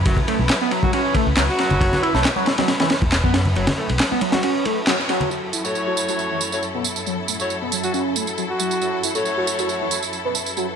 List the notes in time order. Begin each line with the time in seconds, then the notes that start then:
Already playing: F#3 C#4 E4 B4
0.05 F#1 F#3, kick, ride, muted conga
0.17 kick, low conga
0.28 A3, ride
0.39 B1, high conga
0.49 snare, clap, ride
0.61 B3
0.71 F#3, ride
0.83 F#3 F#4, kick, high conga
0.93 C#4 F#4, ride
1.14 A3, kick, ride, muted conga
1.27 C#2
1.37 C#2 F#3, snare, clap, ride
1.48 F#4, snare
1.58 F#3, snare, ride
1.70 F#1, ride, low conga
1.81 F#1 F#3, kick, ride, muted conga
1.92 F#3, snare, low conga
2.03 E4, ride
2.14 B1 A3, snare, muted conga, high conga
2.25 snare, clap, ride
2.36 F#3, high conga
2.46 snare, ride
2.58 F#3, snare, ride, high conga
2.68 snare, ride
2.80 E3, snare, ride
2.90 snare, ride
3.02 E1, kick, muted conga, high conga
3.12 snare, clap, ride
3.24 F#2 B3, kick
3.34 snare, ride
3.46 low conga
3.56 F#1 F#3, ride, muted conga
3.67 snare, ride, low conga
3.78 A3
3.89 B1, ride, high conga
3.99 snare, clap, ride
4.11 B3, high conga
4.21 F#3, ride, muted conga
4.32 F#3 F#4, snare, ride, high conga
4.43 C#4 F#4, ride
4.65 A3, ride, muted conga
4.87 F#3, snare, clap, ride
4.99 snare
5.09 F#3, snare, ride
5.21 ride, low conga
5.31 F#2 F#3 E4 A4, tambourine
5.43 F#3
5.53 E4, tambourine
5.64 A3 E4 F#4 C#5, tambourine
5.75 tambourine
5.87 F#3
5.97 tambourine
6.08 F#3, tambourine
6.19 tambourine
6.31 E3
6.41 tambourine
6.52 A3 E4 F#4 C#5, tambourine
6.63 tambourine
6.74 B3
6.84 tambourine
6.96 tambourine
7.06 F#3, tambourine
7.28 A3, tambourine
7.40 A3 E4 F#4 C#5, tambourine
7.50 tambourine
7.62 B3
7.72 F#3, tambourine
7.83 F#3 F#4, tambourine
7.94 C#4 F#4, tambourine
8.16 A3, tambourine
8.27 tambourine
8.38 F#3, tambourine
8.50 F#4
8.60 F#3, tambourine
8.71 tambourine
8.81 F#3, tambourine
8.93 F#3
9.03 E4, tambourine
9.15 A3 E4 F#4 C#5, tambourine
9.25 tambourine
9.37 F#3
9.47 tambourine
9.59 F#3, tambourine
9.69 tambourine
9.81 E3
9.91 tambourine
10.03 tambourine
10.13 tambourine
10.25 B3
10.35 tambourine
10.46 tambourine
10.57 F#3, tambourine